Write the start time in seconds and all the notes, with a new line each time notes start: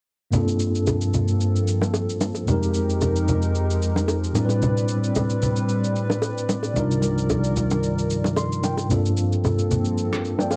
0.31 G2 F3 A#3 C4 D4 A4, low conga, shaker
0.36 F4 A4
0.48 shaker
0.60 shaker
0.75 shaker
0.87 high bongo, low conga, shaker
1.01 shaker
1.14 low conga, shaker
1.28 shaker
1.40 shaker
1.56 shaker
1.67 shaker
1.81 low bongo, shaker
1.93 high bongo, shaker
2.09 shaker
2.21 low bongo, shaker
2.35 high bongo, shaker
2.45 F2 G3 G#3 C4 D#4 G4 A#4, low conga, shaker
2.50 G#3 G4 A#4
2.63 shaker
2.74 shaker
2.90 shaker
3.01 high bongo, low conga, shaker
3.16 shaker
3.28 low conga, shaker
3.42 shaker
3.55 shaker
3.70 shaker
3.82 shaker
3.96 low bongo, shaker
4.08 high bongo, shaker
4.24 shaker
4.33 A2 G3 C4 D4 B4 D5, low bongo, shaker
4.37 E4 A#4
4.45 B4
4.49 high bongo, shaker
4.62 low conga, shaker
4.77 shaker
4.88 shaker
5.04 shaker
5.15 high bongo, low conga, shaker
5.30 shaker
5.42 low conga, shaker
5.56 shaker
5.69 shaker
5.84 shaker
5.96 shaker
6.10 low bongo, shaker
6.22 high bongo, shaker
6.38 shaker
6.49 low bongo, shaker
6.63 high bongo, shaker
6.74 C2 G2 C3 D#3 F3 G3 D4 D#4 A#4, low conga, shaker
6.79 F4 A#4
6.91 shaker
7.02 low bongo, shaker
7.18 shaker
7.30 high bongo, low conga, shaker
7.44 shaker
7.56 low conga, shaker
7.70 low bongo, shaker
7.83 shaker
7.98 shaker
8.10 shaker
8.24 low bongo, shaker
8.36 C6, high bongo, shaker
8.52 shaker
8.63 G5, low bongo, shaker
8.77 high bongo, shaker
8.88 G2 A#3 C4 D4 A4, low conga, shaker
8.93 F4 A4
9.05 shaker
9.17 shaker
9.32 shaker
9.44 high bongo, low conga, shaker
9.59 shaker
9.71 low conga, shaker
9.85 shaker
9.97 shaker
10.13 cross-stick, shaker
10.25 shaker
10.39 D5 G5, low bongo, shaker
10.50 C5 F5, high bongo, shaker